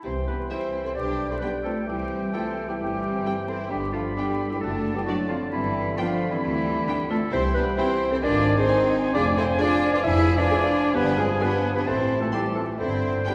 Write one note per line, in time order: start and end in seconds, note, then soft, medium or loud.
0.03 0.43 C2 medium
0.03 0.98 E3 medium
0.03 0.12 C4 medium
0.03 0.15 C4 medium
0.03 0.12 E4 medium
0.03 0.26 G4 medium
0.03 0.26 C5 medium
0.03 3.66 G5 medium
0.03 0.30 C6 medium
0.27 0.50 B3 medium
0.27 0.35 B3 medium
0.27 0.35 D4 medium
0.27 0.49 G4 medium
0.27 0.38 B4 medium
0.27 0.50 B5 medium
0.50 0.58 G3 soft
0.50 0.84 C4 medium
0.50 0.82 C4 medium
0.50 0.84 E4 medium
0.50 0.58 E4 soft
0.50 0.83 G4 medium
0.50 0.85 C5 medium
0.50 0.58 E5 medium
0.50 0.84 C6 medium
0.84 0.89 C4 medium
0.84 0.91 C4 medium
0.84 0.89 E4 medium
0.84 0.95 A4 medium
0.84 0.96 C5 medium
0.84 0.96 C6 medium
0.95 1.35 B1 medium
0.95 1.86 G3 medium
0.95 1.29 D4 medium
0.95 1.30 D4 medium
0.95 1.30 G4 medium
0.95 1.29 B4 medium
0.95 1.29 D5 medium
0.95 1.32 D6 medium
1.29 1.35 C4 medium
1.29 1.36 E4 medium
1.29 1.42 A4 medium
1.29 1.38 C5 medium
1.29 1.40 C6 medium
1.38 1.51 B3 medium
1.38 1.50 B3 medium
1.38 1.50 D4 medium
1.38 1.49 B4 medium
1.38 1.50 G5 medium
1.38 1.47 B5 medium
1.43 1.51 G3 medium
1.43 1.51 D4 soft
1.43 1.65 G4 medium
1.63 1.75 A3 medium
1.63 1.87 A3 medium
1.63 1.73 C4 medium
1.63 1.87 F4 medium
1.63 1.86 A4 medium
1.63 1.71 A5 medium
1.86 2.26 C2 medium
1.86 3.72 E3 medium
1.86 2.33 G3 medium
1.86 2.34 G3 medium
1.86 2.33 C4 medium
1.86 2.31 E4 medium
1.86 2.32 G4 medium
1.86 2.34 G5 medium
2.33 2.42 G3 medium
2.33 2.68 A3 medium
2.33 2.69 A3 medium
2.33 2.67 C4 medium
2.33 2.42 E4 medium
2.33 2.67 F4 medium
2.33 2.67 A4 medium
2.33 2.41 G5 medium
2.33 2.68 A5 medium
2.68 2.79 G3 medium
2.68 2.80 G3 medium
2.68 2.73 B3 medium
2.68 2.79 E4 medium
2.68 2.73 G4 medium
2.68 2.74 G5 medium
2.80 3.18 G1 medium
2.80 3.47 G3 medium
2.80 3.48 G3 medium
2.80 3.47 C4 medium
2.80 3.45 E4 medium
2.80 3.47 G4 medium
2.80 3.50 G5 medium
3.25 3.33 G3 medium
3.25 3.33 E4 medium
3.25 3.34 G5 medium
3.47 3.70 C4 medium
3.47 3.56 C4 medium
3.47 3.70 E4 medium
3.47 3.70 A4 medium
3.47 3.58 C5 medium
3.47 3.71 C6 medium
3.70 4.09 G1 medium
3.70 7.32 D3 medium
3.70 3.79 G3 medium
3.70 3.81 G3 medium
3.70 3.93 B3 medium
3.70 3.92 D4 medium
3.70 3.94 G4 medium
3.70 3.77 G5 medium
3.70 4.63 B5 medium
3.92 4.16 F3 medium
3.92 4.05 F3 medium
3.92 4.01 A3 medium
3.92 4.15 D4 medium
3.92 4.15 F4 medium
3.92 4.00 F5 medium
4.15 4.48 G3 medium
4.15 4.49 G3 medium
4.15 4.50 B3 medium
4.15 4.26 B3 medium
4.15 4.48 D4 medium
4.15 4.25 D4 medium
4.15 4.49 G4 medium
4.15 4.25 G5 medium
4.15 4.50 G5 medium
4.49 4.61 G3 medium
4.49 4.56 G3 medium
4.49 4.56 B3 medium
4.49 4.61 E4 medium
4.49 4.60 G4 medium
4.49 4.62 G5 medium
4.60 5.00 F#1 medium
4.60 4.94 A3 medium
4.60 4.95 A3 medium
4.60 4.95 D4 medium
4.60 4.94 A4 medium
4.60 5.50 A5 medium
4.60 4.95 A5 medium
4.64 4.94 F#4 medium
4.94 5.06 G3 medium
4.94 5.07 G3 medium
4.94 5.07 B3 medium
4.94 5.00 G4 medium
4.94 5.02 G5 medium
4.99 5.08 E4 medium
5.05 5.13 F#3 medium
5.05 5.29 F#3 medium
5.05 5.29 A3 medium
5.05 5.15 A3 medium
5.05 5.15 D4 medium
5.05 5.29 D4 medium
5.05 5.16 F#4 medium
5.05 5.17 D5 medium
5.05 5.13 F#5 medium
5.28 5.37 F3 medium
5.28 5.40 F3 medium
5.28 5.50 G3 medium
5.28 5.51 C4 medium
5.28 5.39 F4 medium
5.28 5.36 F5 medium
5.51 5.90 G1 medium
5.51 5.96 E3 medium
5.51 5.97 E3 medium
5.51 5.96 G3 medium
5.51 5.95 C4 medium
5.51 5.98 E4 loud
5.51 5.97 E5 medium
5.51 7.28 B5 medium
5.97 6.30 F3 medium
5.97 6.31 F3 medium
5.97 6.30 A3 medium
5.97 6.05 B3 medium
5.97 6.05 D4 medium
5.97 6.29 D4 medium
5.97 6.30 F4 medium
5.97 6.33 F5 medium
5.97 6.06 G5 medium
6.30 6.35 E3 medium
6.30 6.42 E3 medium
6.30 6.35 G3 medium
6.30 6.42 C4 medium
6.30 6.42 E4 medium
6.30 6.43 E5 medium
6.40 6.80 D2 medium
6.40 7.08 E3 medium
6.40 7.09 E3 medium
6.40 7.08 G3 medium
6.40 7.11 E4 loud
6.40 6.81 E5 medium
6.45 7.08 C4 medium
6.88 6.96 B3 medium
6.88 6.96 D4 medium
6.88 6.96 G5 medium
7.09 7.20 A3 medium
7.09 7.17 A3 medium
7.09 7.18 C4 medium
7.09 7.32 F4 medium
7.09 7.33 A4 loud
7.09 7.17 A5 medium
7.31 7.70 C2 medium
7.31 8.24 E3 medium
7.31 7.39 C4 loud
7.31 7.55 C4 loud
7.31 7.55 E4 loud
7.31 7.54 G4 loud
7.31 7.43 C5 loud
7.31 8.25 G5 medium
7.31 7.57 C6 loud
7.54 7.77 B3 loud
7.54 7.63 B3 medium
7.54 7.63 D4 loud
7.54 7.77 G4 medium
7.54 7.64 B4 loud
7.54 7.77 B5 loud
7.77 8.09 C4 loud
7.77 8.10 C4 loud
7.77 7.86 C4 medium
7.77 8.11 E4 loud
7.77 7.86 E4 medium
7.77 8.10 G4 loud
7.77 8.11 C5 loud
7.77 7.87 G5 medium
7.77 8.11 C6 loud
8.11 8.15 C4 loud
8.11 8.16 C4 medium
8.11 8.17 E4 medium
8.11 8.22 A4 medium
8.11 8.17 C5 loud
8.11 8.17 C6 medium
8.22 8.61 G#1 loud
8.22 8.97 D#3 medium
8.22 8.56 D4 loud
8.22 8.57 F4 loud
8.22 8.55 A#4 loud
8.22 8.57 D5 loud
8.22 11.88 G#5 loud
8.22 8.56 D6 loud
8.56 9.13 C4 loud
8.56 9.13 D#4 loud
8.56 9.10 G#4 loud
8.56 8.94 C5 loud
8.56 8.94 C6 loud
8.68 8.76 D#4 medium
8.68 8.76 G#4 medium
8.68 8.76 G#5 medium
9.12 9.52 F1 loud
9.12 11.88 F3 medium
9.12 9.36 D4 loud
9.12 9.37 D4 loud
9.12 9.23 F4 loud
9.12 9.36 G#4 loud
9.12 9.39 D5 loud
9.12 9.35 D6 loud
9.36 9.59 C4 loud
9.36 9.46 E4 loud
9.36 9.58 A4 loud
9.36 9.59 C5 loud
9.36 9.43 C6 loud
9.58 9.66 D4 medium
9.58 9.92 D4 loud
9.58 9.91 D4 loud
9.58 9.92 F4 loud
9.58 9.90 G#4 loud
9.58 9.67 G#4 medium
9.58 9.92 D5 loud
9.58 9.67 G#5 medium
9.58 9.93 D6 loud
9.92 9.97 D4 loud
9.92 10.04 D4 medium
9.92 10.04 F4 loud
9.92 10.05 B4 loud
9.92 10.03 D5 loud
9.92 9.99 D6 loud
10.03 10.42 F1 loud
10.03 10.37 E4 loud
10.03 10.38 E4 loud
10.03 10.39 G#4 loud
10.03 10.36 C5 loud
10.03 10.38 E5 loud
10.03 10.38 E6 loud
10.38 10.95 D4 loud
10.38 10.96 D4 loud
10.38 10.95 F4 loud
10.38 10.92 B4 loud
10.38 10.96 D5 loud
10.38 10.97 D6 loud
10.50 10.58 D4 medium
10.50 10.58 G#4 medium
10.50 10.58 G#5 medium
10.94 11.33 G1 medium
10.94 11.02 B3 loud
10.94 11.18 B3 loud
10.94 11.18 D4 loud
10.94 11.16 G4 loud
10.94 11.17 B4 loud
10.94 11.19 B5 loud
11.17 11.26 G#3 loud
11.17 11.28 G#3 medium
11.17 11.42 C4 loud
11.17 11.39 F4 loud
11.17 11.43 G#4 loud
11.17 11.25 G#5 medium
11.40 11.74 B3 loud
11.40 11.75 B3 loud
11.40 11.49 D4 medium
11.40 11.75 D4 loud
11.40 11.48 F4 medium
11.40 11.72 G4 medium
11.40 11.75 B4 loud
11.40 11.48 G#5 medium
11.40 11.75 B5 loud
11.75 11.87 B3 medium
11.75 11.81 B3 medium
11.75 11.87 D4 medium
11.75 11.86 G4 medium
11.75 11.81 B4 loud
11.75 11.81 B5 medium
11.85 12.25 A1 medium
11.85 12.81 E3 medium
11.85 12.20 C4 medium
11.85 12.21 C4 medium
11.85 12.21 E4 medium
11.85 12.19 A4 medium
11.85 12.23 C5 loud
11.85 12.62 A5 medium
11.85 12.21 C6 loud
12.20 12.26 A3 medium
12.20 12.28 A3 medium
12.20 12.26 C4 medium
12.20 12.32 F4 medium
12.20 12.35 A4 medium
12.20 12.26 A5 medium
12.32 12.56 G3 medium
12.32 12.44 G3 medium
12.32 12.41 B3 medium
12.32 12.40 C4 medium
12.32 12.41 E4 medium
12.32 12.55 E4 medium
12.32 12.54 G4 loud
12.32 12.55 G5 medium
12.32 12.40 C6 medium
12.55 12.79 A3 medium
12.55 12.69 A3 medium
12.55 12.63 C4 medium
12.55 12.78 F4 medium
12.55 12.66 A4 medium
12.55 12.62 A5 medium
12.79 13.19 G1 medium
12.79 13.35 D3 medium
12.79 13.26 C4 loud
12.79 13.27 C4 medium
12.79 13.25 E4 medium
12.79 13.24 A4 medium
12.79 13.28 C5 loud
12.79 13.35 G5 medium
12.79 13.26 C6 medium
13.26 13.35 B3 medium
13.26 13.35 D4 medium
13.26 13.35 G4 medium
13.26 13.35 B4 medium
13.26 13.34 G5 medium
13.26 13.35 B5 medium